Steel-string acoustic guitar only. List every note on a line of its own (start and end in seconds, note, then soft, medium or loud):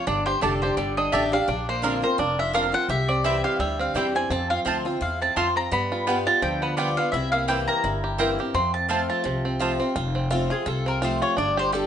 0.07 0.74 G2 medium
0.41 0.76 D3 medium
0.41 0.76 G3 medium
0.41 0.76 D4 medium
0.41 0.77 G4 medium
0.77 1.12 D3 medium
1.13 1.32 D3 medium
1.13 1.32 G3 medium
1.13 1.33 D4 medium
1.13 1.31 G4 medium
1.32 1.48 D4 medium
1.32 1.47 G4 medium
1.48 2.15 A#2 medium
1.82 2.02 D3 medium
1.82 2.02 A#3 loud
1.82 2.03 C4 medium
1.82 2.01 F4 loud
2.02 2.19 C4 medium
2.02 2.18 F4 medium
2.18 2.86 F2 medium
2.53 2.73 D3 medium
2.53 2.73 A#3 medium
2.53 2.73 C4 loud
2.53 2.71 F4 medium
2.72 2.89 C4 medium
2.72 2.88 F4 medium
2.89 3.57 C3 medium
3.24 3.58 E3 medium
3.24 3.58 G3 loud
3.24 3.59 C4 medium
3.24 3.59 E4 medium
3.60 4.27 G2 medium
3.95 4.14 E3 medium
3.95 4.14 G3 medium
3.95 4.15 C4 medium
3.95 4.14 E4 medium
4.15 4.31 C4 soft
4.15 4.30 E4 medium
4.31 4.98 F2 medium
4.65 4.84 F3 medium
4.65 4.85 A3 medium
4.65 4.85 C4 medium
4.65 4.84 F4 loud
4.85 5.01 C4 soft
4.85 5.00 F4 medium
5.01 5.35 E4 medium
5.36 5.70 F3 medium
5.71 6.06 G3 medium
6.07 6.41 G3 medium
6.07 6.42 B3 medium
6.07 6.42 F4 loud
6.42 7.10 D3 medium
6.77 6.96 G3 medium
6.77 6.97 B3 medium
6.77 6.96 F4 loud
6.97 7.14 B3 soft
6.97 7.12 F4 medium
7.14 7.81 C3 medium
7.48 7.82 E3 medium
7.48 7.83 A#3 medium
7.48 7.83 C4 loud
7.48 7.83 E4 loud
7.84 8.51 G2 medium
8.18 8.38 E3 medium
8.18 8.38 A#3 loud
8.18 8.38 C4 medium
8.18 8.38 E4 medium
8.39 8.55 C4 soft
8.39 8.54 E4 medium
8.54 9.22 F2 medium
8.89 9.23 F3 medium
8.89 9.23 A3 medium
8.89 9.24 C4 medium
8.89 9.24 F4 medium
9.24 9.92 C3 loud
9.59 9.79 F3 medium
9.59 9.79 A3 medium
9.59 9.80 C4 medium
9.59 9.78 F4 loud
9.80 9.96 C4 soft
9.80 9.95 F4 medium
9.96 10.63 F2 medium
10.31 10.50 F3 loud
10.31 10.50 A3 medium
10.31 10.51 C4 medium
10.31 10.49 F4 loud
10.50 10.67 C4 medium
10.50 10.66 F4 medium
10.66 11.34 C3 medium
11.02 11.36 F3 medium
11.02 11.36 A3 loud
11.02 11.36 C4 medium
11.02 11.37 F4 medium
11.38 11.87 G2 loud
11.72 11.87 D3 loud
11.72 11.87 G3 loud
11.72 11.87 D4 medium
11.72 11.87 G4 loud